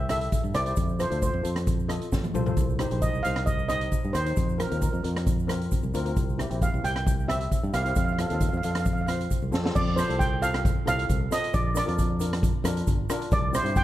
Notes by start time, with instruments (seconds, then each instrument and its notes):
Already playing: fingered electric bass C2
0.09 steel pan E4 G4 A4 E5, cross-stick, closed hi-hat, shaker
0.21 closed hi-hat
0.32 kick, closed hi-hat, shaker
0.44 fingered electric bass G2, shaker
0.54 fingered electric bass C2, steel pan E4 G4 C5 D5, cross-stick, closed hi-hat, shaker
0.65 steel pan E4 G4 C5, closed hi-hat, shaker
0.76 fingered electric bass F2, kick, closed hi-hat, shaker
0.88 shaker
0.99 steel pan F4 A4 C5, cross-stick, closed hi-hat, shaker
1.10 fingered electric bass D2, steel pan F4 A4 C5, closed hi-hat, shaker
1.22 steel pan C5, kick, closed hi-hat, shaker
1.34 fingered electric bass F2
1.43 fingered electric bass F2, steel pan F4 A4 C5, closed hi-hat, shaker
1.56 cross-stick, closed hi-hat, shaker
1.67 kick, closed hi-hat, shaker
1.79 shaker
1.88 steel pan F4 A4 D#5, cross-stick, closed hi-hat, shaker
2.01 closed hi-hat, shaker
2.12 fingered electric bass A1, kick, snare, shaker
2.24 high tom, shaker
2.34 fingered electric bass C2, steel pan F4 A4 C5, mid tom, shaker
2.46 steel pan F4 A4 C5, floor tom, shaker
2.57 fingered electric bass C2, kick, closed hi-hat, shaker
2.69 shaker
2.79 steel pan D#4 G4 C5, cross-stick, closed hi-hat, shaker
2.91 fingered electric bass A#1, steel pan D#4 G4 C5, closed hi-hat, shaker
3.02 steel pan D#5, kick, closed hi-hat, shaker
3.13 fingered electric bass C2, shaker
3.23 fingered electric bass C2, steel pan D#4 G4 C5 F5, closed hi-hat, shaker
3.36 cross-stick, closed hi-hat
3.46 steel pan D#5, kick, closed hi-hat, shaker
3.59 shaker
3.69 steel pan D#4 G4 C5 D#5, cross-stick, closed hi-hat, shaker
3.81 closed hi-hat
3.92 kick, closed hi-hat, shaker
4.04 fingered electric bass G2, shaker
4.13 fingered electric bass D#2, steel pan D#4 G4 C5, cross-stick, closed hi-hat, shaker
4.26 steel pan D#4 G4 C5, closed hi-hat, shaker
4.37 fingered electric bass F2, kick, closed hi-hat, shaker
4.49 shaker
4.58 steel pan C4 F4 A#4, cross-stick, closed hi-hat, shaker
4.71 fingered electric bass D#2, steel pan C4 F4 A#4, closed hi-hat, shaker
4.82 steel pan A#4, kick, closed hi-hat, shaker
4.93 fingered electric bass F2, shaker
5.03 fingered electric bass F2, steel pan C4 F4 A#4, closed hi-hat
5.17 cross-stick, closed hi-hat
5.27 kick, closed hi-hat, shaker
5.39 shaker
5.47 steel pan C4 F4 A#4, cross-stick, closed hi-hat, shaker
5.62 closed hi-hat
5.71 kick, closed hi-hat, shaker
5.83 fingered electric bass C2, shaker
5.94 fingered electric bass D2, steel pan C4 F4 A#4, closed hi-hat, shaker
6.05 steel pan C4 F4 A#4, closed hi-hat, shaker
6.17 fingered electric bass C2, kick, closed hi-hat, shaker
6.29 shaker
6.38 steel pan C4 E4 G4, cross-stick, closed hi-hat, shaker
6.50 fingered electric bass A#1, steel pan C4 E4 G4, closed hi-hat, shaker
6.62 steel pan F5, kick, closed hi-hat, shaker
6.74 fingered electric bass C2, shaker
6.83 fingered electric bass C2, steel pan C4 E4 G4 G5, closed hi-hat, shaker
6.96 cross-stick, closed hi-hat
7.07 kick, closed hi-hat, shaker
7.19 shaker
7.28 steel pan C4 E4 G4 E5, cross-stick, closed hi-hat, shaker
7.41 closed hi-hat
7.52 kick, closed hi-hat, shaker
7.63 fingered electric bass G2, shaker
7.74 fingered electric bass C2, steel pan C4 E4 G4 F5, cross-stick, closed hi-hat, shaker
7.83 steel pan C4 E4 G4 F5, closed hi-hat, shaker
7.89 steel pan F5
7.96 fingered electric bass F2, steel pan F5, kick, closed hi-hat, shaker
8.05 steel pan F5, shaker
8.13 steel pan F5
8.19 steel pan C4 F4 A4 F5, cross-stick, closed hi-hat, shaker
8.27 steel pan C4 F4 A4 F5, closed hi-hat, shaker
8.31 fingered electric bass D#2, steel pan F5
8.41 steel pan F5, kick, closed hi-hat, shaker
8.49 steel pan F5
8.53 fingered electric bass F2, shaker
8.57 steel pan F5
8.63 fingered electric bass F2, steel pan C4 F4 A4 F5, closed hi-hat, shaker
8.71 steel pan F5, cross-stick, closed hi-hat, shaker
8.80 steel pan F5
8.85 steel pan F5, kick, closed hi-hat, shaker
8.93 steel pan F5, shaker
9.01 steel pan F5
9.07 steel pan C4 F4 C5 F5, cross-stick, closed hi-hat, shaker
9.20 closed hi-hat, shaker
9.31 kick, closed hi-hat, shaker
9.42 fingered electric bass C2, shaker
9.52 fingered electric bass F2, steel pan C4 F4 A4, snare, shaker
9.64 steel pan C4 F4 A4, snare
9.75 fingered electric bass F2, steel pan D5, kick, crash, shaker
9.96 steel pan C4 F4 A4 C5, cross-stick, closed hi-hat, shaker
10.08 fingered electric bass C2, steel pan C4 F4 A4, closed hi-hat
10.19 steel pan G5, kick, closed hi-hat, shaker
10.41 steel pan C4 F4 A4 F5, closed hi-hat, shaker
10.54 cross-stick, closed hi-hat
10.65 kick, closed hi-hat, shaker
10.86 fingered electric bass C2, steel pan C4 F4 A4 F5, cross-stick, closed hi-hat, shaker
10.99 closed hi-hat
11.09 fingered electric bass C2, kick, closed hi-hat, shaker
11.31 steel pan C4 F4 A4 D#5, cross-stick, closed hi-hat, shaker
11.44 closed hi-hat
11.54 fingered electric bass A#1, steel pan D5, kick, closed hi-hat, shaker
11.75 steel pan D4 F4 A#4 D5, cross-stick, closed hi-hat, shaker
11.86 fingered electric bass F2, steel pan D4 F4 A#4, closed hi-hat
11.98 kick, closed hi-hat, shaker
12.20 steel pan D4 F4 A#4, closed hi-hat, shaker
12.33 cross-stick, closed hi-hat
12.43 kick, closed hi-hat, shaker
12.64 fingered electric bass F2, steel pan D4 F4 A#4, cross-stick, closed hi-hat, shaker
12.77 closed hi-hat
12.87 fingered electric bass G1, kick, closed hi-hat, shaker
13.10 steel pan D4 F4 A#4, cross-stick, closed hi-hat, shaker
13.22 closed hi-hat
13.32 fingered electric bass C2, steel pan D5, kick, closed hi-hat, shaker
13.53 steel pan C4 E4 G4 C5, cross-stick, closed hi-hat, shaker
13.64 fingered electric bass G2, steel pan C4 E4 G4, closed hi-hat
13.76 steel pan G5, kick, closed hi-hat, shaker